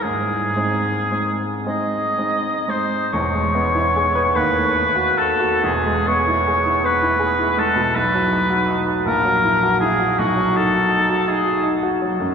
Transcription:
0.03 grand piano G#2, oboe G#4
0.56 grand piano G#3 C4 D#4
1.11 grand piano G#3 C4 D#4
1.66 grand piano G#3 C4 D#4, oboe D#5
2.18 grand piano G#3 C4 D#4
2.68 grand piano G#3 C4 D#4, oboe C5
3.13 grand piano E1 E2, oboe C#5
3.34 grand piano G#3
3.55 grand piano B3
3.75 grand piano E4
3.96 grand piano G#4
4.15 grand piano B4
4.36 grand piano D#2, oboe B4
4.55 grand piano A3
4.76 grand piano B3
4.96 grand piano F#4
5.18 grand piano A4, oboe A4
5.40 grand piano F#4
5.63 grand piano E1 E2, oboe G#4
5.86 grand piano G#3
6.08 grand piano B3, oboe C#5
6.27 grand piano E4
6.47 grand piano G#4
6.66 grand piano E4
6.83 grand piano B3, oboe B4
7.02 grand piano E4
7.19 grand piano G#4
7.39 grand piano E4
7.57 grand piano G#3, oboe A4
7.76 grand piano B2
7.95 grand piano B1, oboe B4
8.14 grand piano F#3
8.32 grand piano D#4
8.50 grand piano F#4
8.68 grand piano D#4
8.87 grand piano F#4
9.06 grand piano A#1, oboe A#4
9.25 grand piano F#3
9.44 grand piano E4
9.63 grand piano F#4
9.80 grand piano E4, oboe G#4
9.99 grand piano F#4
10.19 grand piano B1, oboe F#4
10.36 grand piano F#3
10.55 grand piano D#4, oboe A4
10.74 grand piano F#4
10.90 grand piano D#4
11.10 grand piano F#4
11.28 grand piano D#4, oboe G#4
11.45 grand piano F#4
11.63 grand piano D#4
11.83 grand piano F#4
12.02 grand piano F#3
12.20 grand piano F#2

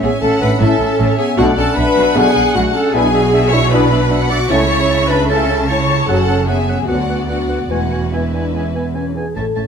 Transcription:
Already playing: bassoon C#4, violin section C#5, oboe E5
0.03 double bass section A1, cello section A2, clarinet B3, viola section G#4, violin section G#5, flute section G#5
0.21 double bass section A1, cello section A2, clarinet C#4, viola section A4, violin section F#5 A5, flute section A5
0.41 double bass section A1, cello section A2, clarinet D4, viola section B4, violin section B5, flute section B5
0.61 double bass section A1, cello section A2, trombone section E3 A3, clarinet C#4, french horn section C#4 E4, viola section A4, violin section E5 A5, flute section A5
0.80 double bass section A1, cello section A2
0.99 double bass section A1, cello section A2, violin section C#5
1.18 clarinet B3, viola section G#4, violin section G#5, flute section G#5
1.37 double bass section B1, cello section B2, trombone section B2 A3, clarinet A3, bassoon D4, french horn section D4 F#4, viola section F#4, violin section D5 F#5, flute section F#5, oboe F#5
1.57 double bass section B1, cello section B2, clarinet C#4, viola section A4, flute section A5, violin section A5
1.76 double bass section B1, cello section B2, clarinet D4, viola section B4, violin section E5 B5, flute section B5
1.96 double bass section B1, cello section B2
2.15 double bass section B1, cello section B2, trombone section B2 A3, clarinet B3, french horn section D4 F#4, viola section G#4, violin section F#5 G#5, flute section G#5
2.35 double bass section B1, cello section B2
2.54 double bass section B1, cello section B2, clarinet A3, viola section F#4, flute section F#5, violin section F#5
2.74 clarinet C#4, viola section A4, violin section A5, flute section A5
2.94 double bass section B1, cello section B2, trombone section B2 B3, clarinet B3, bassoon D4, french horn section D4 E4, viola section G#4, oboe E5, violin section G#5, flute section G#5
3.14 bassoon D4, oboe E5
3.33 bassoon D4, violin section E5, oboe E5
3.52 bassoon D4, clarinet E4, viola section C#5, oboe E5, flute section C#6, violin section C#6
3.71 trombone section B2 B3, clarinet D4, bassoon D4, french horn section D4 E4, viola section B4, violin section D5 B5, oboe E5, flute section B5
3.92 bassoon D4, oboe E5
4.11 bassoon D4, oboe E5, violin section F#5
4.30 bassoon D4, clarinet F#4, viola section D5, oboe E5, flute section D6, violin section D6
4.50 double bass section C#2, trombone section C#3 A3, cello section C#3, bassoon C#4, french horn section C#4 E4, clarinet E4, viola section C#5, violin section E5 C#6, oboe A5, flute section C#6
4.71 bassoon C#4, oboe A5
4.90 bassoon C#4, oboe A5
5.09 bassoon C#4, clarinet D4, viola section B4, oboe A5, violin section B5, flute section B5
5.29 trombone section C#3 A3, bassoon C#4, french horn section C#4 E4, clarinet C#4, viola section A4, flute section A5, violin section A5, oboe A5
5.48 bassoon C#4, oboe A5
5.69 bassoon C#4, clarinet E4, viola section C#5, oboe A5, violin section A5 C#6, flute section C#6
5.89 bassoon C#4, oboe A5
6.08 double bass section F#1, cello section F#2, trombone section C#3 F#3, clarinet C#4, bassoon C#4, french horn section C#4 F#4, viola section A4, oboe F#5, violin section F#5 A5, flute section A5
6.28 bassoon C#4, oboe F#5
6.48 clarinet B3, bassoon C#4, viola section G#4, violin section E5 G#5, oboe F#5, flute section G#5
6.69 bassoon C#4, oboe F#5
6.88 cello section D2, double bass section D2, trombone section D3 F#3, clarinet B3, bassoon B3, french horn section B3 F#4, viola section F#4, violin section D5 F#5, oboe F#5, flute section F#5
7.09 bassoon B3, oboe F#5
7.28 bassoon B3, clarinet B3, viola section F#4, oboe F#5, violin section F#5, flute section F#5
7.49 bassoon B3, oboe F#5
7.70 double bass section E1, cello section E2, trombone section E3 G#3, clarinet A3, bassoon B3, french horn section B3 B4, viola section F#4, violin section B4 F#5, flute section F#5, oboe G#5
7.92 bassoon B3, oboe G#5
8.12 clarinet G#3, french horn section B3, bassoon B3, viola section E4, violin section E5, flute section E5, oboe G#5
8.33 bassoon B3, french horn section D4, oboe G#5
8.54 trombone section E3 G#3, bassoon B3, french horn section C#4, oboe G#5
8.74 bassoon B3, french horn section B3, oboe G#5
8.95 bassoon B3, french horn section C#4, oboe G#5
9.15 bassoon B3, french horn section D4 G#4, oboe G#5
9.36 double bass section A1, cello section A2, timpani A2, viola section C#4, french horn section A4, clarinet C#5, violin section E5 A5, oboe A5
9.56 double bass section A1, cello section A2, viola section C#4, clarinet C#5, violin section E5 A5, oboe A5

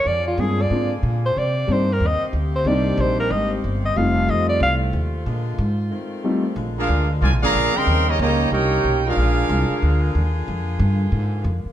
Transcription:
0.03 upright bass F2, saxophone section D3 A#3 F4 G#4
0.08 alto saxophone D5
0.28 alto saxophone F4
0.38 upright bass G2, grand piano G#3 A#3 C4 D4 F4, alto saxophone G#4
0.62 alto saxophone D5
0.70 upright bass G#2, grand piano G#3 A#3 C4 D4 F4
1.03 upright bass A#2
1.26 alto saxophone C5
1.36 upright bass C3, saxophone section C3 C4 G4, alto saxophone D5
1.67 upright bass G2, grand piano G3 A#3 C4 D4 D#4
1.72 alto saxophone C5
1.93 alto saxophone A#4
2.00 upright bass D#2
2.07 alto saxophone D#5
2.22 muted upright bass stroke
2.33 upright bass D2
2.56 alto saxophone C5
2.65 upright bass C2, grand piano G3 A#3 C4 D4 D#4, alto saxophone D5
2.98 upright bass A#1, alto saxophone C5
3.20 alto saxophone A#4
3.31 upright bass G#1, alto saxophone D#5
3.64 upright bass G1
3.85 alto saxophone D#5
3.94 upright bass F1, grand piano G3 A3 C4 D#4 F4, saxophone section A3 C4 F4, alto saxophone F5
4.28 upright bass F2, alto saxophone D#5
4.49 alto saxophone D5
4.60 upright bass C2, alto saxophone F5
4.93 upright bass D#2
5.26 upright bass A#2, saxophone section D3 G#3 A#3
5.58 upright bass G#2
5.90 saxophone section D#3 A3 C4
6.24 grand piano G3 A3 C4 D#4 F4
6.56 upright bass A#1, saxophone section D3 G#3 A#3 F4
6.78 trombone section G#3 D4 F4, trumpet section D4 G#4 A#4 F5
6.89 upright bass D2
7.21 upright bass C2, trombone section D3 F3 G#3, trumpet section F4 A#4 D5 G#5
7.33 upright bass A#1
7.42 upright bass G#1, trombone section D3 F3 A#3, trumpet section G#4 D5 F5 A#5
7.55 upright bass A#1
7.75 trombone section C#3 G3 C4, trumpet section A#4 D#5 G5 C6, muted upright bass stroke
7.86 upright bass D#2, saxophone section G3 C#4 D#4
8.07 trombone section C#3 G3 A#3, trumpet section G4 C#5 D#5 A#5
8.19 upright bass C#2, trombone section C#3 G3 A#3, trumpet section G4 C#5 D#5 A#5
8.51 upright bass C2, trombone section A#3 C#4 G4, trumpet section D#4 A#4 C#5 G5
8.84 upright bass B1
9.06 trombone section G#3 D4 F4, trumpet section D4 G#4 A#4 F5
9.17 upright bass A#1, saxophone section D3 F4 G#4
9.49 upright bass C2
9.70 muted upright bass stroke
9.82 upright bass D2
10.15 upright bass D#2
10.48 upright bass F2
10.79 upright bass G2
11.12 upright bass G#2
11.44 upright bass F2
11.65 muted upright bass stroke

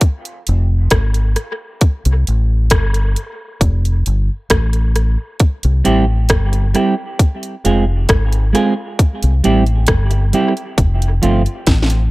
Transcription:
0.01 kick, closed hi-hat
0.25 closed hi-hat
0.47 fingered electric bass F1, closed hi-hat
0.90 fingered electric bass G#1, kick, cross-stick, closed hi-hat
1.14 closed hi-hat
1.36 cross-stick, closed hi-hat
1.81 kick, closed hi-hat
2.05 fingered electric bass C2, closed hi-hat
2.27 fingered electric bass A1, closed hi-hat
2.70 fingered electric bass G1, kick, cross-stick, closed hi-hat
2.94 closed hi-hat
3.16 closed hi-hat
3.61 fingered electric bass F1, kick, closed hi-hat
3.85 closed hi-hat
4.06 fingered electric bass G1, closed hi-hat
4.50 fingered electric bass A1, kick, cross-stick, closed hi-hat
4.73 closed hi-hat
4.96 cross-stick, closed hi-hat
5.40 kick, closed hi-hat
5.63 fingered electric bass C2, closed hi-hat
5.85 fingered electric bass A1, clean electric guitar G3 C4 E4 G4, closed hi-hat
6.29 fingered electric bass G1, kick, cross-stick, closed hi-hat
6.52 muted clean electric guitar stroke, closed hi-hat
6.74 clean electric guitar G3 C4 E4 G4, cross-stick, closed hi-hat
7.19 kick, closed hi-hat
7.43 closed hi-hat
7.65 fingered electric bass F1, clean electric guitar G#3 C4 F4 G#4, closed hi-hat
8.09 fingered electric bass G#1, kick, cross-stick, closed hi-hat
8.32 closed hi-hat
8.53 clean electric guitar G#3 C4 F4 G#4, cross-stick, closed hi-hat
8.99 kick, closed hi-hat
9.23 fingered electric bass C2, closed hi-hat
9.44 fingered electric bass A1, clean electric guitar G3 C4 E4 G4, closed hi-hat
9.66 closed hi-hat
9.87 fingered electric bass G1, kick, cross-stick, closed hi-hat
10.11 muted clean electric guitar stroke, closed hi-hat
10.33 clean electric guitar G3 C4 E4 G4, closed hi-hat
10.57 closed hi-hat
10.78 fingered electric bass F1, kick, closed hi-hat
11.02 closed hi-hat
11.22 fingered electric bass G1, clean electric guitar F3 A3 C4 F4, closed hi-hat
11.46 closed hi-hat
11.67 fingered electric bass A1, kick, snare, closed hi-hat
11.83 snare
11.90 closed hi-hat

